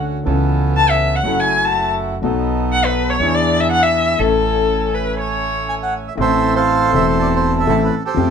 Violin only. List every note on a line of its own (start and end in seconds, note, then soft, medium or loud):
0.77 0.92 A5 loud
0.90 1.18 E5 medium
1.16 1.41 F#5 medium
1.40 1.66 G#5 medium
1.65 1.87 A5 medium
2.72 2.87 F#5 loud
2.85 3.11 B4 medium
3.10 3.36 C#5 medium
3.35 3.62 D5 medium
3.60 3.71 E5 medium
3.71 3.84 F#5 loud
3.83 4.21 E5 medium
4.19 4.96 A4 medium
4.94 5.19 B4 medium
5.20 5.91 C#5 medium